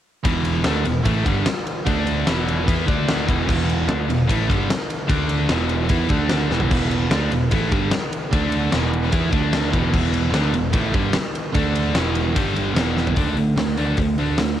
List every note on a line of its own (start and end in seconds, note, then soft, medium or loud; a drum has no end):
0.24 0.62 E1 medium
0.24 0.64 E2 medium
0.24 0.64 B2 medium
0.24 0.65 E3 medium
0.24 kick loud
0.24 ride loud
0.45 ride medium
0.64 0.84 D2 medium
0.64 0.84 D3 medium
0.64 0.84 A3 medium
0.64 0.85 D4 medium
0.64 snare loud
0.64 ride medium
0.85 1.04 E1 medium
0.85 1.01 E2 medium
0.85 1.02 B2 medium
0.85 ride medium
1.05 1.24 A1 medium
1.05 1.25 A2 medium
1.05 1.25 E3 loud
1.05 1.25 A3 loud
1.05 kick loud
1.05 ride loud
1.25 1.44 G1 medium
1.25 1.45 G2 medium
1.25 1.45 D3 medium
1.25 1.46 G3 medium
1.25 kick loud
1.25 ride medium
1.46 snare loud
1.46 ride loud
1.67 ride medium
1.86 2.24 D2 medium
1.86 2.26 D3 medium
1.86 2.26 A3 medium
1.86 2.27 D4 loud
1.86 kick loud
1.86 ride medium
2.07 ride medium
2.27 2.64 E1 medium
2.27 2.66 E2 medium
2.27 2.67 B2 medium
2.27 2.66 E3 medium
2.27 snare loud
2.27 ride medium
2.48 ride medium
2.67 2.86 E2 loud
2.67 2.85 E3 medium
2.67 2.86 B3 loud
2.67 2.87 E4 loud
2.67 kick loud
2.67 ride medium
2.86 3.25 D2 medium
2.86 3.26 D3 medium
2.86 3.27 A3 loud
2.86 3.27 D4 medium
2.86 kick loud
2.86 ride medium
3.08 snare loud
3.08 ride medium
3.27 3.47 E1 medium
3.27 3.45 E2 medium
3.27 3.46 B2 medium
3.27 3.47 E3 medium
3.27 kick loud
3.27 ride medium
3.47 3.86 E1 medium
3.47 3.87 E2 medium
3.47 3.87 B2 medium
3.47 3.87 E3 medium
3.47 kick loud
3.47 crash medium
3.69 ride medium
3.87 4.07 D2 loud
3.87 4.07 D3 medium
3.87 4.07 A3 loud
3.87 4.08 D4 loud
3.87 snare loud
3.87 ride medium
4.08 4.27 E1 medium
4.08 4.24 E2 medium
4.08 4.25 B2 medium
4.08 ride medium
4.28 4.47 A1 loud
4.28 4.47 A2 medium
4.28 4.48 E3 loud
4.28 4.48 A3 loud
4.28 kick loud
4.28 ride loud
4.47 4.68 G1 medium
4.47 4.67 G2 medium
4.47 4.67 D3 medium
4.47 4.68 G3 medium
4.47 kick loud
4.51 ride medium
4.70 snare loud
4.70 ride loud
4.90 ride medium
5.08 5.47 D2 medium
5.08 5.48 D3 medium
5.08 5.49 A3 medium
5.08 5.49 D4 medium
5.08 kick loud
5.08 ride loud
5.29 ride medium
5.49 5.87 E1 medium
5.49 5.89 E2 medium
5.49 5.89 B2 medium
5.49 5.88 E3 loud
5.49 snare loud
5.49 ride medium
5.69 ride medium
5.89 6.09 E2 medium
5.89 6.09 E3 medium
5.89 6.10 B3 medium
5.89 6.10 E4 medium
5.89 kick loud
5.89 ride medium
6.09 6.47 D2 medium
6.09 6.50 D3 medium
6.09 6.50 A3 medium
6.09 6.50 D4 medium
6.09 kick loud
6.09 ride medium
6.29 snare loud
6.29 ride medium
6.50 6.69 E1 medium
6.50 6.70 E2 medium
6.50 6.71 B2 medium
6.50 6.71 E3 medium
6.50 snare medium
6.60 floor tom medium
6.71 7.08 E1 medium
6.71 7.10 E2 medium
6.71 7.11 B2 medium
6.71 7.11 E3 medium
6.71 kick loud
6.71 crash medium
6.91 ride medium
7.11 7.30 D2 medium
7.11 7.31 D3 medium
7.11 7.31 A3 medium
7.11 7.32 D4 loud
7.11 snare loud
7.11 ride medium
7.30 7.49 E1 medium
7.30 7.48 E2 medium
7.30 7.48 B2 medium
7.30 ride medium
7.51 7.70 A1 loud
7.51 7.71 A2 medium
7.51 7.72 E3 medium
7.51 7.72 A3 loud
7.51 kick loud
7.51 ride medium
7.71 7.90 G1 medium
7.71 7.91 G2 medium
7.71 7.92 D3 medium
7.71 7.92 G3 medium
7.71 kick loud
7.71 ride medium
7.92 snare loud
7.92 ride medium
8.13 ride medium
8.33 8.70 D2 medium
8.33 8.73 D3 medium
8.33 8.73 A3 medium
8.33 8.73 D4 medium
8.33 kick loud
8.33 ride loud
8.52 ride medium
8.72 9.10 E1 loud
8.72 9.12 E2 medium
8.72 9.12 B2 medium
8.72 9.11 E3 loud
8.72 snare loud
8.72 ride medium
8.94 ride medium
9.12 9.32 E2 loud
9.12 9.31 E3 loud
9.12 9.32 B3 loud
9.12 9.33 E4 medium
9.12 kick loud
9.12 ride loud
9.32 9.70 D2 medium
9.32 9.72 D3 medium
9.32 9.73 A3 medium
9.32 9.73 D4 medium
9.32 kick loud
9.32 ride medium
9.53 snare loud
9.53 ride medium
9.73 9.92 E1 medium
9.73 9.92 E2 medium
9.73 9.93 B2 loud
9.73 9.94 E3 medium
9.73 kick loud
9.73 ride medium
9.93 10.31 E1 medium
9.93 10.33 E2 medium
9.93 10.33 B2 medium
9.93 10.34 E3 medium
9.93 kick loud
9.93 crash medium
10.14 ride medium
10.33 10.52 D2 medium
10.33 10.53 D3 medium
10.33 10.54 A3 medium
10.33 10.54 D4 loud
10.33 snare loud
10.33 ride medium
10.53 10.72 E1 medium
10.53 10.70 E2 medium
10.53 10.71 B2 medium
10.53 ride medium
10.73 10.93 A1 loud
10.73 10.93 A2 medium
10.73 10.94 E3 loud
10.73 10.94 A3 loud
10.73 kick loud
10.73 ride medium
10.94 11.13 G1 loud
10.94 11.14 G2 medium
10.94 11.14 D3 medium
10.94 11.15 G3 loud
10.94 kick loud
10.94 ride medium
11.13 snare loud
11.13 ride medium
11.35 ride medium
11.55 11.93 D2 loud
11.55 11.95 D3 medium
11.55 11.95 A3 medium
11.55 11.96 D4 loud
11.55 kick loud
11.55 ride medium
11.75 ride medium
11.95 12.33 E1 medium
11.95 12.35 E2 medium
11.95 12.36 B2 medium
11.95 12.36 E3 loud
11.95 snare loud
11.95 ride medium
12.15 ride medium
12.36 12.74 G1 medium
12.36 12.76 G2 medium
12.36 12.76 D3 loud
12.36 12.76 G3 loud
12.36 kick loud
12.36 ride loud
12.56 ride medium
12.75 13.13 E1 medium
12.75 13.16 E2 medium
12.75 13.17 B2 medium
12.75 13.17 E3 medium
12.75 snare loud
12.75 ride medium
12.97 snare medium
13.07 floor tom medium
13.16 13.35 D2 medium
13.16 13.36 D3 medium
13.16 13.36 A3 medium
13.16 13.36 D4 medium
13.16 kick medium
13.16 open hi-hat medium
13.37 13.55 D3 medium
13.37 13.56 D3 medium
13.37 13.56 A3 medium
13.37 open hi-hat soft
13.56 13.75 D2 medium
13.56 13.76 D3 medium
13.56 13.76 A3 medium
13.56 snare medium
13.56 open hi-hat medium
13.77 13.96 D2 medium
13.77 13.97 D3 medium
13.77 13.97 A3 medium
13.77 13.97 D4 medium
13.77 open hi-hat medium
13.97 14.16 D2 medium
13.97 14.16 D3 medium
13.97 14.17 A3 medium
13.97 kick loud
13.97 open hi-hat medium
14.18 14.37 D2 medium
14.18 14.38 D3 medium
14.18 14.38 A3 medium
14.18 14.38 D4 medium
14.18 open hi-hat soft
14.38 14.57 D2 medium
14.38 14.57 D3 medium
14.38 14.58 A3 medium
14.38 snare loud
14.38 open hi-hat medium